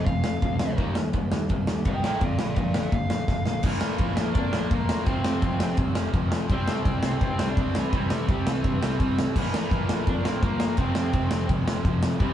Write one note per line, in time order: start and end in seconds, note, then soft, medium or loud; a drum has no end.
0.06 0.37 F1 loud
0.06 0.23 F2 medium
0.06 0.23 C3 medium
0.06 0.23 F3 medium
0.06 0.23 A3 medium
0.06 0.76 F5 medium
0.06 kick loud
0.06 ride medium
0.24 0.41 F2 medium
0.24 0.41 C3 medium
0.24 0.41 F3 medium
0.24 0.42 A3 medium
0.24 snare loud
0.42 0.72 D2 loud
0.42 0.58 F2 medium
0.42 0.59 C3 medium
0.42 0.59 F3 medium
0.42 0.59 A3 medium
0.42 kick loud
0.42 ride medium
0.59 0.76 F2 medium
0.59 0.76 C3 medium
0.59 0.77 F3 medium
0.59 0.77 A3 medium
0.59 snare loud
0.77 0.93 D#2 medium
0.77 0.94 D#3 loud
0.77 0.95 G3 loud
0.77 0.95 A#3 medium
0.77 0.95 D#4 medium
0.77 kick loud
0.77 ride medium
0.95 1.11 D#2 medium
0.95 1.12 D#3 medium
0.95 1.13 G3 medium
0.95 1.12 A#3 medium
0.95 snare loud
1.13 1.29 D#2 medium
1.13 1.30 D#3 medium
1.13 1.31 G3 medium
1.13 1.30 A#3 medium
1.13 kick loud
1.13 ride medium
1.31 1.47 D#2 medium
1.31 1.48 D#3 medium
1.31 1.49 G3 medium
1.31 1.49 A#3 medium
1.31 snare loud
1.49 1.65 C2 medium
1.49 1.66 D#3 medium
1.49 1.67 G3 medium
1.49 1.66 A#3 medium
1.49 kick loud
1.49 ride medium
1.67 1.83 D#2 medium
1.67 1.84 D#3 medium
1.67 1.84 G3 medium
1.67 1.84 A#3 medium
1.67 snare loud
1.85 2.00 C2 loud
1.85 2.02 D#3 medium
1.85 2.02 G3 medium
1.85 2.02 A#3 medium
1.85 2.04 D#5 medium
1.85 2.03 G5 loud
1.85 kick loud
1.85 ride medium
2.03 2.19 A#1 medium
2.03 2.21 A#2 medium
2.03 2.20 D3 medium
2.03 2.21 F3 loud
2.03 2.21 A#3 medium
2.03 2.20 A#4 medium
2.03 2.23 G5 loud
2.03 snare loud
2.21 2.36 F2 medium
2.21 2.38 A#2 medium
2.21 2.37 D3 medium
2.21 2.38 F3 medium
2.21 2.38 D5 medium
2.21 2.38 F5 medium
2.21 kick loud
2.21 ride medium
2.39 2.55 A#1 medium
2.39 2.56 A#2 medium
2.39 2.56 D3 medium
2.39 2.56 F3 medium
2.39 2.55 D5 medium
2.39 2.54 F5 medium
2.39 snare loud
2.55 2.72 A#1 medium
2.55 2.74 A#2 medium
2.55 2.74 D3 medium
2.55 2.74 F3 loud
2.55 2.73 D5 medium
2.55 2.74 F5 medium
2.55 kick loud
2.55 ride medium
2.74 2.90 A#1 medium
2.74 2.91 A#2 medium
2.74 2.91 D3 medium
2.74 2.91 F3 medium
2.74 2.92 D5 medium
2.74 2.93 F5 loud
2.74 snare loud
2.92 3.22 A#1 loud
2.92 3.09 A#2 medium
2.92 3.10 D3 medium
2.92 3.09 F3 loud
2.92 3.63 F5 loud
2.92 kick loud
2.92 ride medium
3.10 3.27 A#2 medium
3.10 3.28 D3 medium
3.10 3.27 F3 medium
3.10 snare loud
3.28 3.58 A#1 loud
3.28 3.45 A#2 medium
3.28 3.45 D3 medium
3.28 3.45 F3 medium
3.28 kick loud
3.28 snare medium
3.46 3.61 A#2 medium
3.46 3.63 D3 medium
3.46 3.63 F3 medium
3.46 snare loud
3.62 3.76 A#1 loud
3.62 4.52 A#2 medium
3.62 4.33 E3 medium
3.62 4.52 F3 loud
3.62 4.50 A#3 loud
3.62 4.33 E4 loud
3.62 kick loud
3.62 crash loud
3.67 5.07 D4 loud
3.67 5.08 F4 loud
3.81 3.94 A#2 medium
3.81 snare loud
3.98 4.11 A#1 medium
3.98 kick loud
3.98 ride medium
4.17 4.30 A#1 loud
4.17 snare loud
4.33 4.47 F2 loud
4.33 4.71 D4 loud
4.33 kick loud
4.33 ride medium
4.37 4.70 D5 medium
4.51 4.66 A#1 medium
4.51 4.68 A#2 medium
4.51 4.70 F3 medium
4.51 4.69 A#3 medium
4.51 snare loud
4.69 4.95 E1 loud
4.69 5.05 A#2 medium
4.69 5.06 F3 medium
4.69 5.04 A#3 medium
4.69 kick loud
4.69 ride medium
4.73 5.07 A#3 loud
4.73 5.06 A#4 medium
4.89 snare loud
5.04 5.19 F1 medium
5.04 5.94 F2 medium
5.04 5.95 C3 loud
5.04 6.49 A3 loud
5.04 5.73 C4 medium
5.04 5.75 C5 medium
5.04 kick loud
5.04 ride medium
5.09 5.94 F3 loud
5.09 6.51 C4 loud
5.09 6.50 F4 loud
5.24 5.37 F2 medium
5.24 snare loud
5.42 5.55 F1 medium
5.42 kick loud
5.42 ride medium
5.59 5.72 F1 loud
5.59 snare loud
5.77 5.90 C2 loud
5.77 kick loud
5.77 ride medium
5.95 6.08 F1 medium
5.95 6.11 F2 medium
5.95 6.14 C3 medium
5.95 6.13 F3 medium
5.95 snare loud
6.12 6.37 F1 loud
6.12 6.48 F2 medium
6.12 6.47 C3 medium
6.12 6.50 F3 loud
6.12 kick loud
6.12 ride medium
6.32 snare loud
6.49 6.62 C2 loud
6.49 7.37 C3 medium
6.49 7.38 G3 loud
6.49 7.37 C4 loud
6.49 7.92 E4 loud
6.49 7.18 C5 medium
6.49 kick loud
6.49 ride medium
6.54 7.24 C4 medium
6.68 6.79 C3 medium
6.68 snare loud
6.85 6.97 C2 medium
6.85 kick loud
6.85 ride medium
7.03 7.15 C2 loud
7.03 snare loud
7.21 7.33 G2 medium
7.21 7.48 C4 medium
7.21 7.47 C5 medium
7.21 kick loud
7.21 ride medium
7.38 7.51 C2 medium
7.38 7.56 G3 medium
7.38 7.55 C4 medium
7.38 snare loud
7.42 7.54 C3 medium
7.49 7.77 D4 loud
7.49 7.74 D5 medium
7.55 7.81 C2 loud
7.55 7.89 C3 medium
7.55 7.91 G3 medium
7.55 7.92 C4 medium
7.55 kick loud
7.55 ride medium
7.75 7.93 E3 medium
7.75 7.93 E4 loud
7.75 snare loud
7.90 8.04 C2 medium
7.90 8.80 C3 medium
7.90 8.81 G3 loud
7.90 kick loud
7.90 ride medium
7.95 8.27 E3 medium
7.95 8.80 C4 loud
7.95 9.35 E4 loud
7.95 8.31 E4 loud
8.10 8.23 C3 medium
8.10 snare loud
8.28 8.40 C2 medium
8.28 8.46 G3 medium
8.28 8.46 G4 loud
8.28 kick loud
8.28 ride medium
8.46 8.58 C2 loud
8.46 8.80 E3 medium
8.46 8.80 E4 medium
8.46 snare loud
8.64 8.76 G2 medium
8.64 kick loud
8.64 ride medium
8.81 8.93 C2 loud
8.81 9.15 E3 medium
8.81 8.99 G3 medium
8.81 8.98 C4 medium
8.81 9.15 E4 loud
8.81 snare loud
8.86 8.98 C3 medium
8.99 9.24 C2 loud
8.99 9.34 C3 medium
8.99 9.34 G3 medium
8.99 9.35 C4 medium
8.99 kick loud
8.99 ride medium
9.19 snare loud
9.34 9.48 A#1 loud
9.34 10.23 A#2 medium
9.34 10.04 E3 medium
9.34 10.23 F3 loud
9.34 10.22 A#3 loud
9.34 10.78 D4 loud
9.34 kick loud
9.34 crash loud
9.38 10.08 E4 medium
9.53 9.65 A#2 medium
9.53 snare loud
9.71 9.83 A#1 medium
9.71 kick loud
9.71 ride medium
9.89 10.01 A#1 loud
9.89 snare loud
10.07 10.19 F2 loud
10.07 10.26 D4 medium
10.07 10.25 D5 medium
10.07 kick loud
10.07 ride medium
10.24 10.36 A#1 medium
10.24 10.40 A#2 medium
10.24 10.41 F3 medium
10.24 10.41 A#3 medium
10.24 10.42 C4 medium
10.24 10.42 C5 medium
10.24 snare loud
10.41 10.66 G1 loud
10.41 10.76 A#2 medium
10.41 10.77 F3 medium
10.41 10.78 A#3 medium
10.41 10.76 A#4 medium
10.41 kick loud
10.41 ride medium
10.45 10.78 A#3 medium
10.60 snare loud
10.77 10.90 F1 loud
10.77 11.66 F2 medium
10.77 11.66 C3 loud
10.77 11.64 F3 loud
10.77 12.21 A3 loud
10.77 11.45 C4 medium
10.77 12.22 C4 loud
10.77 11.46 C5 medium
10.77 kick loud
10.77 ride medium
10.95 11.08 F2 medium
10.95 snare loud
11.13 11.26 F1 medium
11.13 kick loud
11.13 ride medium
11.31 11.44 F1 loud
11.31 snare loud
11.49 11.61 C2 loud
11.49 kick loud
11.49 ride medium
11.65 11.79 F1 medium
11.65 11.83 C3 medium
11.65 11.83 F3 medium
11.65 snare loud
11.69 11.82 F2 medium
11.83 12.08 F1 loud
11.83 12.19 F2 medium
11.83 12.17 C3 medium
11.83 12.20 F3 medium
11.83 kick loud
11.83 ride medium
12.03 snare loud
12.18 12.32 C2 medium
12.18 12.33 C3 medium
12.18 12.33 E3 medium
12.18 12.33 G3 loud
12.18 12.33 C4 loud
12.18 12.33 E4 loud
12.18 kick loud
12.18 ride medium
12.22 12.33 E4 loud